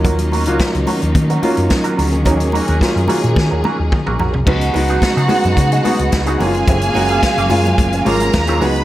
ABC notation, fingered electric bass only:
X:1
M:4/4
L:1/16
Q:1/4=108
K:D#m
V:1 name="Fingered electric bass" clef=bass
D,,3 C,, z C,, z D,, D,2 z F,, z2 =D,,2 | D,,3 D,, z F,, z A,, D, D,, z D,, z A,,, B,,, ^B,,, | C,,2 C,,2 z C, z F,, C,2 z C,, C,,2 F,,,2 | F,,,2 F,,,2 z F,,, F,,2 F,,,2 G,,,2 D,,2 C,,2 |]